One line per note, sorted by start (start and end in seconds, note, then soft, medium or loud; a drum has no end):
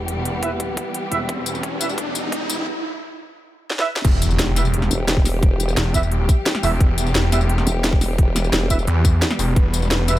0.00 0.24 E1 loud
0.00 2.63 E3 medium
0.00 2.63 G3 medium
0.00 2.63 B3 medium
0.00 2.63 G4 medium
0.00 riser medium
0.08 closed hi-hat medium
0.25 0.76 E1 loud
0.25 closed hi-hat medium
0.43 0.49 E4 medium
0.43 0.49 B4 medium
0.43 0.49 E5 medium
0.43 kick loud
0.43 closed hi-hat medium
0.60 kick medium
0.60 closed hi-hat medium
0.77 kick loud
0.77 closed hi-hat medium
0.94 closed hi-hat medium
1.12 1.27 E1 loud
1.12 1.18 E4 medium
1.12 1.18 B4 medium
1.12 1.18 E5 medium
1.12 closed hi-hat medium
1.29 2.14 E1 medium
1.29 kick loud
1.29 closed hi-hat medium
1.46 closed hi-hat medium
1.46 tambourine medium
1.55 tambourine soft
1.63 kick loud
1.63 closed hi-hat medium
1.81 1.87 E4 medium
1.81 1.87 B4 medium
1.81 1.87 E5 medium
1.81 closed hi-hat medium
1.81 tambourine medium
1.89 tambourine soft
1.98 kick loud
1.98 closed hi-hat medium
2.15 2.67 E1 loud
2.15 closed hi-hat medium
2.15 tambourine medium
2.32 kick loud
2.32 closed hi-hat medium
2.50 closed hi-hat medium
2.50 tambourine medium
3.70 snare medium
3.79 3.89 E4 medium
3.79 3.89 B4 medium
3.79 3.89 E5 loud
3.79 snare medium
3.96 snare medium
4.05 4.89 E1 medium
4.05 10.19 E3 medium
4.05 10.19 G3 medium
4.05 10.19 B3 medium
4.05 9.54 G4 medium
4.05 kick loud
4.05 closed hi-hat medium
4.05 crash loud
4.05 impact medium
4.22 closed hi-hat medium
4.22 tambourine medium
4.30 tambourine soft
4.39 snare loud
4.39 closed hi-hat medium
4.56 4.63 E4 medium
4.56 4.62 B4 medium
4.56 4.62 E5 medium
4.56 snare soft
4.56 closed hi-hat loud
4.56 tambourine medium
4.65 tambourine soft
4.74 closed hi-hat medium
4.82 snare soft
4.91 5.76 E1 medium
4.91 closed hi-hat medium
4.91 tambourine medium
5.08 snare loud
5.08 closed hi-hat medium
5.17 kick loud
5.25 snare soft
5.25 open hi-hat medium
5.25 tambourine medium
5.43 kick loud
5.43 closed hi-hat medium
5.60 closed hi-hat medium
5.60 tambourine medium
5.69 tambourine soft
5.77 6.27 E1 loud
5.77 snare loud
5.77 closed hi-hat medium
5.94 6.00 E4 medium
5.94 6.00 B4 medium
5.94 6.00 E5 medium
5.94 kick medium
5.94 closed hi-hat medium
5.94 tambourine medium
6.03 tambourine soft
6.12 closed hi-hat medium
6.29 kick loud
6.29 closed hi-hat medium
6.29 tambourine medium
6.46 snare loud
6.46 closed hi-hat medium
6.55 snare medium
6.63 6.79 E1 loud
6.63 6.69 E4 medium
6.63 6.69 B4 medium
6.63 6.69 E5 loud
6.63 open hi-hat medium
6.63 tambourine medium
6.81 7.65 E1 medium
6.81 kick loud
6.81 closed hi-hat medium
6.98 closed hi-hat medium
6.98 tambourine medium
7.06 tambourine soft
7.15 snare loud
7.15 closed hi-hat medium
7.32 7.38 E4 medium
7.32 7.38 B4 medium
7.32 7.38 E5 medium
7.32 snare soft
7.32 closed hi-hat medium
7.32 tambourine medium
7.41 tambourine soft
7.49 closed hi-hat medium
7.58 snare soft
7.67 8.51 E1 loud
7.67 closed hi-hat medium
7.67 tambourine medium
7.84 snare loud
7.84 closed hi-hat medium
7.93 kick loud
8.01 snare soft
8.01 open hi-hat medium
8.01 tambourine medium
8.18 kick loud
8.18 closed hi-hat medium
8.36 snare medium
8.36 closed hi-hat medium
8.36 tambourine medium
8.44 tambourine soft
8.53 8.86 E1 loud
8.53 snare loud
8.53 closed hi-hat medium
8.70 8.76 E4 medium
8.70 8.76 B4 medium
8.70 8.76 E5 loud
8.70 kick medium
8.70 closed hi-hat medium
8.70 tambourine medium
8.79 tambourine soft
8.87 9.21 E2 loud
8.87 closed hi-hat medium
9.05 kick loud
9.05 closed hi-hat medium
9.05 tambourine medium
9.22 snare loud
9.22 closed hi-hat medium
9.31 snare medium
9.39 9.55 E1 loud
9.39 open hi-hat medium
9.39 tambourine medium
9.56 10.19 E1 medium
9.56 10.19 B4 medium
9.56 kick loud
9.56 closed hi-hat medium
9.74 closed hi-hat medium
9.74 tambourine medium
9.82 tambourine soft
9.91 snare loud
9.91 closed hi-hat medium
10.08 10.14 E4 medium
10.08 10.14 B4 medium
10.08 10.14 E5 medium
10.08 snare soft
10.08 closed hi-hat medium
10.08 tambourine medium